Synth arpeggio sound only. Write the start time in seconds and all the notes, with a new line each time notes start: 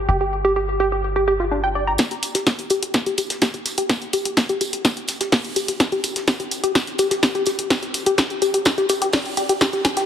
0.09 G4
0.21 G4
0.45 G4
0.56 G4
0.80 G4
0.92 G4
1.16 G4
1.28 G4
1.40 F4
1.51 D4
1.64 G5
1.75 D5
1.87 A#5
1.99 G4
2.11 G4
2.35 G4
2.47 G4
2.70 G4
2.83 G4
3.06 G4
3.18 G4
3.42 G4
3.54 G4
3.78 G4
3.90 G4
4.13 G4
4.26 G4
4.49 G4
4.61 G4
4.85 G4
4.97 G4
5.21 G4
5.33 G4
5.56 G4
5.68 G4
5.92 G4
6.04 G4
6.28 G4
6.40 G4
6.64 G4
6.75 G4
6.99 G4
7.11 G4
7.35 G4
7.47 G4
7.71 G4
7.83 G4
8.06 G4
8.18 G4
8.42 G4
8.54 G4
8.78 G4
8.90 G4
9.02 G4
9.13 D5
9.37 G4
9.49 G4
9.61 G4
9.73 G4
9.97 G4